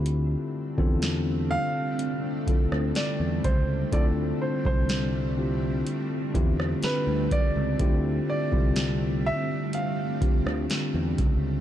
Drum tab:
HH |x---x---x-x-x-x-|x---x---x-x-x-x-|x---x---x-x-x-x-|
SD |----o------ro---|----o------ro---|----o------ro---|
BD |---o------o---o-|o--o------o---o-|o--o------o---o-|